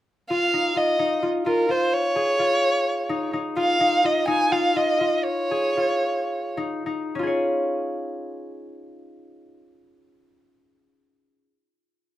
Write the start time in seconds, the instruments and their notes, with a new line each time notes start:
0.30 harp F4, violin F5
0.53 harp D#4
0.76 harp F4, violin D#5
0.99 harp D#4
1.23 harp F4
1.46 harp F4, violin A#4
1.69 harp F4, violin C5
1.94 violin C#5
2.16 harp G#4
2.39 harp F4
3.09 harp D#4
3.33 harp D#4
3.56 harp F4, violin F5
3.80 harp D#4
4.04 harp F4, violin D#5
4.27 harp D#4, violin G#5
4.52 harp F4, violin F5
4.76 harp F4, violin D#5
5.01 harp F4
5.18 violin D#5
5.24 violin C#5
5.51 harp G#4
5.77 harp F4
6.57 harp D#4
6.86 harp D#4
7.15 harp C#4
7.19 harp F4 G#4
7.27 harp C#5